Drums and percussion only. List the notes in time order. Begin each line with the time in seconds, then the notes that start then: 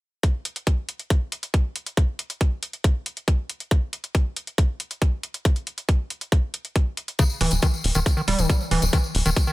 0.23 kick, closed hi-hat
0.45 closed hi-hat
0.56 closed hi-hat
0.67 kick, closed hi-hat
0.89 closed hi-hat
0.99 closed hi-hat
1.10 kick, closed hi-hat
1.32 closed hi-hat
1.43 closed hi-hat
1.54 kick, closed hi-hat
1.76 closed hi-hat
1.86 closed hi-hat
1.97 kick, closed hi-hat
2.19 closed hi-hat
2.30 closed hi-hat
2.41 kick, closed hi-hat
2.63 closed hi-hat
2.73 closed hi-hat
2.84 kick, closed hi-hat
3.06 closed hi-hat
3.17 closed hi-hat
3.28 kick, closed hi-hat
3.49 closed hi-hat
3.60 closed hi-hat
3.71 kick, closed hi-hat
3.93 closed hi-hat
4.04 closed hi-hat
4.15 kick, closed hi-hat
4.36 closed hi-hat
4.47 closed hi-hat
4.58 kick, closed hi-hat
4.80 closed hi-hat
4.91 closed hi-hat
5.02 kick, closed hi-hat
5.23 closed hi-hat
5.34 closed hi-hat
5.45 kick, closed hi-hat
5.56 closed hi-hat
5.67 closed hi-hat
5.78 closed hi-hat
5.89 kick, closed hi-hat
6.10 closed hi-hat
6.21 closed hi-hat
6.32 kick, closed hi-hat
6.54 closed hi-hat
6.65 closed hi-hat
6.76 kick, closed hi-hat
6.97 closed hi-hat
7.08 closed hi-hat
7.19 kick, closed hi-hat, tambourine
7.30 tambourine
7.41 open hi-hat
7.51 closed hi-hat, tambourine
7.62 kick, closed hi-hat, tambourine
7.74 tambourine
7.84 open hi-hat
7.95 closed hi-hat, tambourine
8.06 kick, closed hi-hat, tambourine
8.17 tambourine
8.28 open hi-hat
8.39 closed hi-hat, tambourine
8.49 kick, closed hi-hat, tambourine
8.61 tambourine
8.71 open hi-hat
8.82 closed hi-hat, tambourine
8.93 kick, closed hi-hat, tambourine
9.04 tambourine
9.15 open hi-hat
9.26 closed hi-hat, tambourine
9.36 kick, closed hi-hat, tambourine
9.47 tambourine